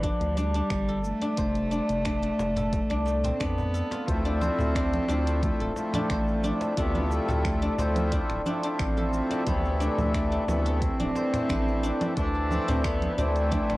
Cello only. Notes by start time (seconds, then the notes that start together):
0.03 F3
0.36 G3
1.03 A3
3.34 C4
3.40 B3
4.08 A3
4.41 C4
5.42 A3
5.77 A3
6.78 B3
7.12 A3
8.80 C4
9.47 B3
9.81 A3
10.48 B3
10.82 C4
12.17 D4
12.69 C4
12.84 B3
13.18 A3